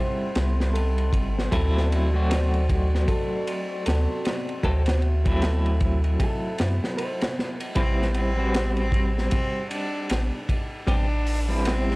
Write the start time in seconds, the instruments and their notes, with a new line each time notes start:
Already playing: clean electric guitar G3 C4 E4 C5, synth drone C4, analog synth pad A4 C6
0.35 sub bass C2, snare, ride
0.60 snare
0.74 clean electric guitar A4, ride
0.98 ride
1.13 sub bass G1, kick, ride
1.39 snare
1.51 sub bass D2, clean electric guitar F#3 A3 C4 E4 A4, analog synth pad F#4 D5, kick, ride
1.77 snare
1.92 ride
2.13 clean electric guitar F#3 A3 C4 F#4
2.30 clean electric guitar C5, snare, ride
2.54 ride
2.69 kick, ride
2.95 snare
3.08 clean electric guitar A4, kick, ride
3.47 ride
3.86 sub bass D2, clean electric guitar A4, snare, ride
4.25 snare, ride
4.49 ride
4.63 sub bass D2, clean electric guitar F#3 A3 C4 A4 C5, analog synth pad E5, kick, ride
4.86 snare, ride
5.02 ride
5.25 clean electric guitar F#3 A3 C4 E4, kick, ride
5.41 clean electric guitar A4, snare, ride
5.66 ride
5.80 kick, ride
6.04 ride
6.19 clean electric guitar A4, kick, ride
6.58 sub bass F#2, snare, ride
6.84 snare
6.97 clean electric guitar C5, ride
7.21 snare, ride
7.39 snare
7.60 ride
7.75 sub bass A1, clean electric guitar G3 C4 E4 B4, cello C4, kick, ride
8.02 snare
8.14 cello C4, ride
8.37 clean electric guitar G3 C4 F#4 B4
8.54 snare, ride
8.77 cello C4, ride
8.92 kick, ride
9.17 cello C4, snare
9.31 kick, ride
9.71 cello D4, ride
10.09 sub bass A1, snare, ride
10.49 kick, ride
10.87 sub bass A1, clean electric guitar G3 B3 C4 G4, cello D4, kick, ride
11.26 open hi-hat
11.49 clean electric guitar G3 C4 E4 B4
11.65 cello C4, snare, ride
11.91 snare